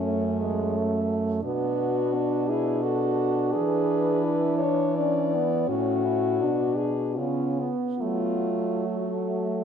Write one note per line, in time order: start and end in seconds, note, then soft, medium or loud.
0.00 1.39 F#2 soft
0.00 1.39 A3 medium
0.00 1.09 C#4 medium
0.05 0.43 A3 soft
0.41 0.78 G#3 soft
0.77 1.44 A3 soft
1.43 3.51 B2 soft
1.43 2.16 B3 medium
1.43 5.52 D4 medium
1.43 2.51 F#4 medium
2.14 2.52 D4 soft
2.49 2.84 E4 medium
2.49 2.84 G#4 medium
2.83 3.54 F#4 medium
2.83 3.52 A4 medium
3.53 5.65 E3 soft
3.53 4.26 G#4 medium
3.53 4.57 B4 medium
4.24 4.64 E4 soft
4.58 4.97 C#5 medium
4.63 4.95 D4 soft
4.95 5.36 C#4 soft
4.95 5.70 D5 medium
5.34 5.70 B3 soft
5.69 6.43 A2 soft
5.69 6.04 C#4 soft
5.69 6.41 C#4 soft
5.69 6.78 F#4 medium
6.05 6.46 E4 medium
6.39 7.20 B2 soft
6.39 7.19 D4 soft
6.44 6.92 D4 soft
6.77 7.17 G#4 medium
7.15 7.71 C#3 soft
7.15 8.54 B3 soft
7.15 7.61 C#4 soft
7.15 7.70 F4 soft
7.60 8.02 B3 soft
7.99 9.64 F#3 soft
7.99 9.64 A3 soft
7.99 8.87 F4 medium
8.86 9.64 A3 soft
8.86 9.64 F#4 soft